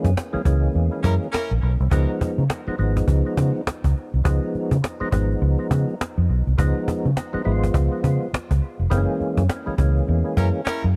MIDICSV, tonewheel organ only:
0, 0, Header, 1, 2, 480
1, 0, Start_track
1, 0, Tempo, 583090
1, 1576, Time_signature, 4, 2, 24, 8
1, 9025, End_track
2, 0, Start_track
2, 0, Title_t, "Tonewheel organ"
2, 0, Program_c, 0, 16
2, 0, Note_on_c, 0, 52, 88
2, 0, Note_on_c, 0, 56, 79
2, 0, Note_on_c, 0, 58, 78
2, 0, Note_on_c, 0, 61, 106
2, 86, Note_off_c, 0, 52, 0
2, 87, Note_off_c, 0, 56, 0
2, 88, Note_off_c, 0, 58, 0
2, 117, Note_off_c, 0, 61, 0
2, 271, Note_on_c, 0, 52, 84
2, 272, Note_on_c, 0, 56, 71
2, 276, Note_on_c, 0, 58, 68
2, 278, Note_on_c, 0, 61, 87
2, 343, Note_off_c, 0, 52, 0
2, 344, Note_off_c, 0, 56, 0
2, 346, Note_off_c, 0, 58, 0
2, 347, Note_off_c, 0, 61, 0
2, 370, Note_on_c, 0, 52, 79
2, 372, Note_on_c, 0, 56, 72
2, 374, Note_on_c, 0, 58, 68
2, 377, Note_on_c, 0, 61, 88
2, 1053, Note_off_c, 0, 52, 0
2, 1054, Note_off_c, 0, 56, 0
2, 1055, Note_off_c, 0, 58, 0
2, 1057, Note_off_c, 0, 61, 0
2, 1576, Note_on_c, 0, 53, 84
2, 1578, Note_on_c, 0, 56, 82
2, 1582, Note_on_c, 0, 59, 74
2, 1586, Note_on_c, 0, 63, 97
2, 2007, Note_off_c, 0, 53, 0
2, 2008, Note_off_c, 0, 56, 0
2, 2010, Note_off_c, 0, 59, 0
2, 2012, Note_off_c, 0, 63, 0
2, 2197, Note_on_c, 0, 53, 77
2, 2204, Note_on_c, 0, 56, 77
2, 2205, Note_on_c, 0, 59, 66
2, 2208, Note_on_c, 0, 63, 82
2, 2266, Note_off_c, 0, 53, 0
2, 2269, Note_off_c, 0, 56, 0
2, 2269, Note_off_c, 0, 59, 0
2, 2271, Note_off_c, 0, 63, 0
2, 2292, Note_on_c, 0, 53, 85
2, 2295, Note_on_c, 0, 56, 73
2, 2297, Note_on_c, 0, 59, 72
2, 2302, Note_on_c, 0, 63, 86
2, 2975, Note_off_c, 0, 53, 0
2, 2976, Note_off_c, 0, 56, 0
2, 2977, Note_off_c, 0, 59, 0
2, 2980, Note_off_c, 0, 63, 0
2, 3491, Note_on_c, 0, 53, 92
2, 3497, Note_on_c, 0, 56, 84
2, 3499, Note_on_c, 0, 59, 88
2, 3502, Note_on_c, 0, 63, 94
2, 3925, Note_off_c, 0, 53, 0
2, 3928, Note_off_c, 0, 56, 0
2, 3929, Note_off_c, 0, 59, 0
2, 3931, Note_off_c, 0, 63, 0
2, 4118, Note_on_c, 0, 53, 78
2, 4121, Note_on_c, 0, 56, 67
2, 4123, Note_on_c, 0, 59, 76
2, 4127, Note_on_c, 0, 63, 97
2, 4187, Note_off_c, 0, 53, 0
2, 4188, Note_off_c, 0, 56, 0
2, 4189, Note_off_c, 0, 59, 0
2, 4191, Note_off_c, 0, 63, 0
2, 4211, Note_on_c, 0, 53, 82
2, 4216, Note_on_c, 0, 56, 71
2, 4219, Note_on_c, 0, 59, 83
2, 4222, Note_on_c, 0, 63, 88
2, 4895, Note_off_c, 0, 53, 0
2, 4898, Note_off_c, 0, 56, 0
2, 4899, Note_off_c, 0, 59, 0
2, 4900, Note_off_c, 0, 63, 0
2, 5414, Note_on_c, 0, 53, 96
2, 5418, Note_on_c, 0, 56, 88
2, 5421, Note_on_c, 0, 59, 87
2, 5426, Note_on_c, 0, 63, 108
2, 5848, Note_off_c, 0, 53, 0
2, 5850, Note_off_c, 0, 56, 0
2, 5852, Note_off_c, 0, 59, 0
2, 5854, Note_off_c, 0, 63, 0
2, 6034, Note_on_c, 0, 53, 87
2, 6036, Note_on_c, 0, 56, 75
2, 6042, Note_on_c, 0, 59, 78
2, 6046, Note_on_c, 0, 63, 95
2, 6106, Note_off_c, 0, 53, 0
2, 6107, Note_off_c, 0, 56, 0
2, 6110, Note_off_c, 0, 59, 0
2, 6111, Note_off_c, 0, 63, 0
2, 6127, Note_on_c, 0, 53, 87
2, 6133, Note_on_c, 0, 56, 70
2, 6134, Note_on_c, 0, 59, 70
2, 6136, Note_on_c, 0, 64, 68
2, 6190, Note_on_c, 0, 65, 90
2, 6202, Note_off_c, 0, 64, 0
2, 6814, Note_off_c, 0, 53, 0
2, 6817, Note_off_c, 0, 56, 0
2, 6817, Note_off_c, 0, 59, 0
2, 6845, Note_off_c, 0, 65, 0
2, 7327, Note_on_c, 0, 52, 91
2, 7330, Note_on_c, 0, 56, 86
2, 7335, Note_on_c, 0, 58, 73
2, 7338, Note_on_c, 0, 60, 87
2, 7390, Note_on_c, 0, 61, 109
2, 7404, Note_off_c, 0, 60, 0
2, 7765, Note_off_c, 0, 52, 0
2, 7767, Note_off_c, 0, 56, 0
2, 7769, Note_off_c, 0, 58, 0
2, 7797, Note_off_c, 0, 61, 0
2, 7952, Note_on_c, 0, 52, 72
2, 7956, Note_on_c, 0, 56, 75
2, 7960, Note_on_c, 0, 58, 76
2, 7962, Note_on_c, 0, 61, 86
2, 8025, Note_off_c, 0, 52, 0
2, 8027, Note_off_c, 0, 56, 0
2, 8029, Note_off_c, 0, 58, 0
2, 8030, Note_off_c, 0, 61, 0
2, 8048, Note_on_c, 0, 52, 76
2, 8051, Note_on_c, 0, 56, 82
2, 8055, Note_on_c, 0, 58, 71
2, 8058, Note_on_c, 0, 61, 81
2, 8734, Note_off_c, 0, 52, 0
2, 8736, Note_off_c, 0, 56, 0
2, 8738, Note_off_c, 0, 58, 0
2, 8740, Note_off_c, 0, 61, 0
2, 9025, End_track
0, 0, End_of_file